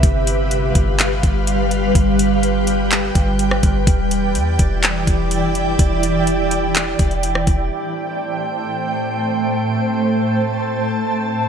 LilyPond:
<<
  \new Staff \with { instrumentName = "Ambient pad" } { \time 4/4 \key a \minor \tempo 4 = 125 << { f''1 | g''1 | g''1~ | g''1 |
g''1 | a''1 | } \\ { <g g' b'>1~ | <g g' b'>1 | <e e' d''>1~ | <e e' d''>1 |
<a, a c''>1~ | <a, a c''>1 | } >> }
  \new Staff \with { instrumentName = "Synth texture" } { \time 4/4 \key a \minor << { <f' b'>1~ | <f' b'>1 | <e' d''>1~ | <e' d''>1 |
<a' g''>1~ | <a' g''>1 | } \\ { g1~ | g1~ | g1~ | g1 |
c'1~ | c'1 | } >> }
  \new Staff \with { instrumentName = "808-style bass" } { \clef bass \time 4/4 \key a \minor g,,4. g,,4 g,,4. | g,,2~ g,,8 g,,4 g,,8 | e,,4 e,8 e,,4 e,,8. f,,8. | e,,2~ e,,8 e,,4 e,,8 |
r1 | r1 | }
  \new DrumStaff \with { instrumentName = "Drums" } \drummode { \time 4/4 <hh bd>8 hh8 hh8 <hh bd>8 <hc hh>8 <hh bd>8 hh8 hh8 | <hh bd>8 hh8 hh8 hh8 <hc hh>8 <hh bd>8 hh16 ss16 <hh bd>8 | <hh bd>8 hh8 hh8 <hh bd>8 <hc hh>8 <hh bd>8 hh8 hh8 | <hh bd>8 hh8 hh8 hh8 <hc hh>8 <hh bd>16 hh16 hh16 ss16 <hh bd>8 |
r4 r4 r4 r4 | r4 r4 r4 r4 | }
>>